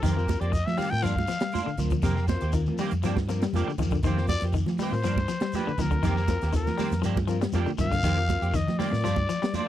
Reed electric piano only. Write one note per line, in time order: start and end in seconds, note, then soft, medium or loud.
0.16 0.56 C4 medium
0.16 0.56 F4 medium
0.16 0.56 A#4 medium
0.91 1.04 C4 medium
0.91 1.04 F4 medium
0.91 1.04 A#4 medium
1.78 2.03 C4 medium
1.78 2.04 F4 medium
1.78 2.04 A#4 medium
2.28 2.43 C4 medium
2.28 2.43 F4 medium
2.28 2.43 A#4 medium
2.53 2.80 C4 medium
2.53 2.81 F4 medium
2.53 2.81 A#4 medium
3.04 3.18 C4 medium
3.04 3.18 F4 medium
3.04 3.19 A#4 medium
3.28 3.43 C4 medium
3.28 3.43 F4 medium
3.28 3.43 A#4 loud
3.54 3.68 C4 medium
3.54 3.68 F4 medium
3.54 3.69 A#4 loud
3.78 3.99 C4 medium
3.78 3.99 F4 medium
3.78 3.99 A#4 medium
4.16 4.56 C4 medium
4.16 4.57 F4 medium
4.16 4.57 A#4 medium
4.91 5.04 C4 medium
4.91 5.04 F4 medium
4.91 5.05 A#4 medium
5.78 6.04 C4 medium
5.78 6.04 F4 medium
5.78 6.05 A#4 medium
6.29 6.43 C4 medium
6.29 6.44 F4 medium
6.29 6.44 A#4 loud
6.53 6.81 C4 medium
6.53 6.81 F4 medium
6.53 6.81 A#4 loud
7.02 7.17 C4 medium
7.02 7.18 F4 medium
7.02 7.18 A#4 medium
7.28 7.43 C4 medium
7.28 7.43 F4 loud
7.28 7.43 A#4 loud
7.53 7.68 C4 loud
7.53 7.68 F4 medium
7.53 7.69 A#4 loud
7.80 8.00 C4 medium
7.80 8.00 F4 medium
7.80 8.00 A#4 medium
8.17 8.57 C4 medium
8.17 8.57 F4 medium
8.17 8.57 A#4 medium
8.91 9.04 C4 medium
8.91 9.04 F4 medium
8.91 9.04 A#4 medium